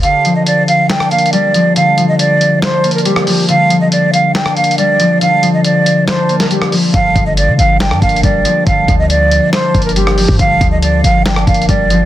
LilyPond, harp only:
\new Staff \with { instrumentName = "Harp" } { \clef bass \time 4/4 \key g \minor \tempo 4 = 139 d8 f4. d'8 bes8 g8 f8 | d8 f4. d'8 bes8 g8 f8 | d8 f4. d'8 bes8 g8 f8 | d8 f4. d'8 bes8 g8 f8 |
d8 f4. d'8 bes8 g8 f8 | d8 f4. d'8 bes8 g8 f8 | d8 f4. d'8 bes8 g8 f8 | }